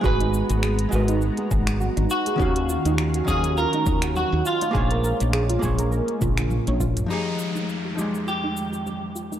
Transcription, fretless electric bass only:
X:1
M:4/4
L:1/16
Q:"Swing 16ths" 1/4=102
K:Fphr
V:1 name="Fretless electric bass" clef=bass
A,,,2 z A,,,2 z A,,,2 z2 A,,,2 z A,,, z2 | E,,2 z E,,2 z E,,2 z2 E,,2 z E,, z2 | B,,,2 z B,,,2 z B,,,2 z2 B,,,2 z B,,,2 z | z16 |]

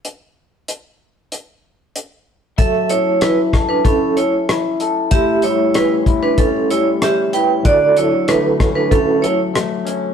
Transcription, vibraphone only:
X:1
M:4/4
L:1/16
Q:1/4=95
K:F#phr
V:1 name="Vibraphone"
z16 | [Ae]2 [Ec]2 [EB] z2 [DB] [CA]2 [Ec] z4 z | [Ge]2 [Ec]2 [EB] z2 [DB] [CA]2 [Ec] z [Ge] z [Bg] z | [Fd]2 [Ec]2 [DB] z2 [DB] [CA]2 [Ec] z4 z |]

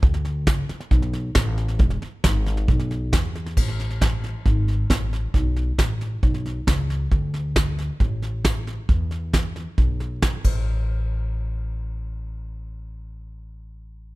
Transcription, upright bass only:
X:1
M:4/4
L:1/8
Q:1/4=135
K:Emix
V:1 name="Upright bass" clef=bass
D,,2 C,, z B,,,2 A,,,2 | E,,, z G,,,2 B,,,2 E,,2 | A,,,4 G,,,2 A,,,2 | B,,,2 A,,,2 B,,,2 C,,2 |
D,,4 A,,,4 | E,,4 B,,,3 A,,,- | A,,,8- | A,,,8 |]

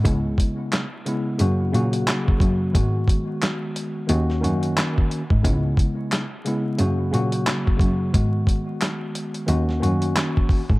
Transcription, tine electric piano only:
X:1
M:4/4
L:1/8
Q:"Swing 16ths" 1/4=89
K:G#m
V:1 name="Tine electric piano"
[C,G,B,E]2 z [C,G,B,E] [C,F,A,F] [C,F,A,F]2 [C,F,A,F] | [D,G,B,F]4 [D,A,CF] [D,A,CF]2 z | [C,G,B,E]2 z [C,G,B,E] [C,F,A,F] [C,F,A,F]2 [C,F,A,F] | [D,G,B,F]4 [D,A,CF] [D,A,CF]2 z |]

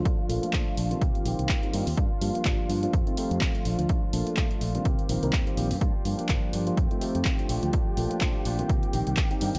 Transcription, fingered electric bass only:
X:1
M:4/4
L:1/16
Q:"Swing 16ths" 1/4=125
K:Bb
V:1 name="Fingered electric bass" clef=bass
z2 B,,, z B,, z B,,, z C, z B,,, C,, z2 G,, E,, | G,, z G,, z G,,, z G,, z F,, z2 F,, z2 B,,, D,, | z2 B,,, z B,, z B,,, z C, z B,,, C,, E,, z B,,, G,, | G,, z G,, z G,,, z G,, z F,, z2 F,, z2 B,,, D,, |
z2 B,,, z B,, z B,,, z C, z B,,, C,, z2 G,, E,, |]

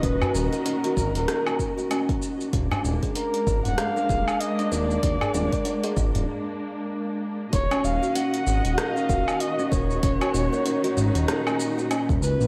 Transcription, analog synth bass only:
X:1
M:4/4
L:1/16
Q:"Swing 16ths" 1/4=96
K:Ebm
V:1 name="Analog synth bass" clef=bass
E,,, z E,,, z3 A,,, E,,, z8 | E,,, z E,,, z3 A,,, E,,, z2 E,,, z3 E,,,2 | E,,, z E,,, z3 A,,, E,,, z8 | E,,, z E,,, z3 A,,, E,,, z2 E,,, z3 E,,,2 |
E,,, z E,,, z3 A,,, E,,, z4 z E,,, D,, B,,, |]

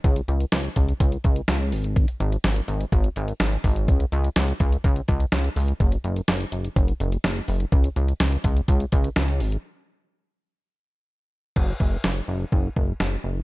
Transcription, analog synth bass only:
X:1
M:4/4
L:1/8
Q:1/4=125
K:C#phr
V:1 name="Analog synth bass" clef=bass
C,, C,, C,, C,, C,, C,, C,, G,,,- | G,,, G,,, G,,, G,,, G,,, G,,, G,,, G,,, | C,, C,, C,, C,, C,, C,, C,, C,, | F,,, F,,, F,,, F,,, F,,, F,,, F,,, F,,, |
C,, C,, C,, C,, C,, C,, C,, G,,, | z8 | F,,, F,,, F,,, F,,, F,,, F,,, F,,, F,,, |]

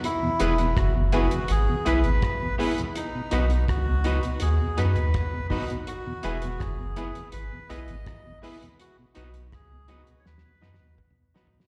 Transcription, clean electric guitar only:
X:1
M:4/4
L:1/8
Q:1/4=82
K:E
V:1 name="Clean electric guitar"
z [B,EGB] z [B,EGB] z [B,EGB] z [B,EGB] | z [B,DFB] z [B,DFB] z [B,DFB] z [B,DFB] | z [B,EGB] z [B,EGB] z [B,EGB] z [B,EGB] | z [B,DFB] z [B,DFB] z [B,DFB] z [B,DFB] |]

